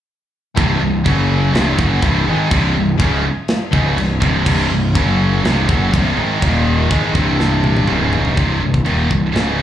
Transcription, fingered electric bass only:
0.58 C1
0.81 C1
1.07 F#1
1.55 C1
1.79 F#1
2.03 C1
2.28 G#1
2.52 C1
2.77 C1
3.00 C#1
3.73 C#1
3.98 C1
4.22 C1
4.47 C1
4.71 C1
4.96 F#1
5.44 C1
5.69 F#1
5.93 C1
6.17 G#1
6.43 D#1
6.91 G#1
7.15 C1
7.89 C#1
8.38 C1
8.63 C1
8.87 D#1
9.11 C1
9.37 C#1

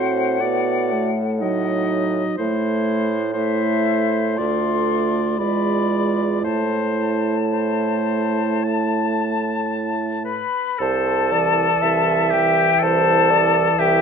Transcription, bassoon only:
Already playing: A2
2.39 A2
4.39 D2
5.39 E2
6.45 A2
10.80 C2
11.82 C2
12.82 C2
13.80 C2

